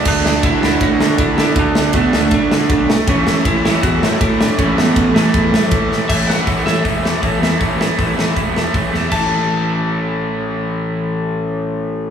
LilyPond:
<<
  \new Staff \with { instrumentName = "Lead electric guitar" } { \time 4/4 \key d \major \tempo 4 = 159 d'4 e'8 e'8 fis'4 e'8 e'8 | d'4 b8 a8 d'4 d'8. r16 | cis'4 e'8 e'8 fis'4 e'8 d'8 | cis'8 b4 a4. r4 |
e''8 fis''4 e''2~ e''8~ | e''2. r4 | a''1~ | a''1 | }
  \new Staff \with { instrumentName = "Overdriven electric guitar" } { \clef bass \time 4/4 \key d \major <d a d'>4 <d a d'>2~ <d a d'>8 <d a d'>8~ | <d a d'>4 <d a d'>2~ <d a d'>8 r8 | <a, e a>4. <a, e a>2~ <a, e a>8 | <a, e a>4. <a, e a>2~ <a, e a>8 |
<a, e a>8 <a, e a>8 <a, e a>8 <a, e a>8 <a, e a>8 <a, e a>8 <a, e a>8 <a, e a>8 | <a, e a>8 <a, e a>8 <a, e a>8 <a, e a>8 <a, e a>8 <a, e a>8 <a, e a>8 <a, e a>8 | <a, e a>1~ | <a, e a>1 | }
  \new Staff \with { instrumentName = "Picked electric bass" } { \clef bass \time 4/4 \key d \major d,8 d,8 d,8 d,8 a,8 d8 d4 | d,8 d,8 d,8 d,8 a,8 d8 b,,4 | a,,8 a,,8 a,,8 a,,8 e,8 a,8 a,4 | a,,8 a,,8 a,,8 a,,8 e,8 a,8 a,4 |
a,,4 a,,8 a,,8 e,,4 a,,8 e,8 | a,,4 a,,8 a,,8 e,,4 a,,8 e,8 | a,,1~ | a,,1 | }
  \new DrumStaff \with { instrumentName = "Drums" } \drummode { \time 4/4 <cymc bd>8 sn8 <bd cymr>8 sn8 <bd cymr>8 sn8 <bd cymr>8 sn8 | <bd cymr>8 sn8 <bd cymr>8 sn8 <bd cymr>8 sn8 <bd cymr>8 sn8 | <bd cymr>8 sn8 <bd cymr>8 sn8 <bd cymr>8 sn8 <bd cymr>8 sn8 | <bd cymr>8 sn8 <bd cymr>8 sn8 <bd cymr>8 sn8 <bd cymr>8 sn8 |
<cymc bd>8 sn8 <hho bd>8 sn8 <hho bd>8 sn8 <hho bd>8 sn8 | <hho bd>8 sn8 <hho bd>8 sn8 <hho bd>8 sn8 <hho bd>8 sn8 | <cymc bd>4 r4 r4 r4 | r4 r4 r4 r4 | }
>>